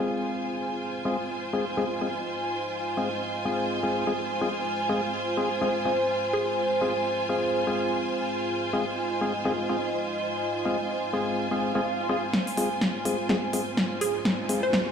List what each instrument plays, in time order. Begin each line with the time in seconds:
Already playing: analog synth pad G#3 F4 C5, string section F4 C5 G#5, downlifter
0.00 synth stab G#3 C4 F4 G#4
0.81 analog synth pad D#5
1.05 synth stab G#3 C4 F4 G#4
1.53 synth stab G#3 C4 F4 G#4
1.77 synth stab G#3 C4 F4 G#4
2.01 synth stab G#3 C4 F4 G#4
2.97 synth stab G#3 C4 F4 G#4
3.45 synth stab G#3 C4 F4 G#4
3.83 synth stab G#3 C4 F4 G#4
4.07 synth stab G#3 C4 F4 G#4
4.41 synth stab G#3 C4 F4 G#4
4.65 analog synth pad C5
4.89 synth stab G#3 C4 F4 G#4
5.37 synth stab G#3 C4 F4 G#4
5.61 synth stab G#3 C4 F4 G#4
5.85 synth stab G#3 C4 F4 G#4
6.33 synth pluck G#4
6.81 synth stab G#3 C4 F4 G#4
7.29 synth stab G#3 C4 F4 G#4
7.67 synth stab G#3 C4 F4 G#4
8.49 analog synth pad D#5
8.73 synth stab G#3 C4 F4 G#4
9.21 synth stab G#3 C4 F4 G#4
9.45 synth stab G#3 C4 F4 G#4
9.69 synth stab G#3 C4 F4 G#4
10.65 synth stab G#3 C4 F4 G#4
11.13 synth stab G#3 C4 F4 G#4
11.37 swell
11.51 synth stab G#3 C4 F4 G#4
11.75 synth stab G#3 C4 F4 G#4
12.09 synth stab G#3 C4 F4 G#4
12.33 analog synth pad G#3 F4 C5, snare, riser
12.47 open hi-hat
12.57 synth stab G#3 C4 F4 G#4, open hi-hat
12.81 snare
13.05 synth stab G#3 C4 F4 G#4, open hi-hat
13.29 synth stab G#3 C4 F4 G#4, snare
13.53 synth stab G#3 C4 F4 G#4, open hi-hat
13.77 snare
14.01 synth pluck G#4, open hi-hat
14.25 snare
14.49 synth stab G#3 C4 F4 G#4, open hi-hat
14.63 synth pluck C5
14.73 synth pluck C5, snare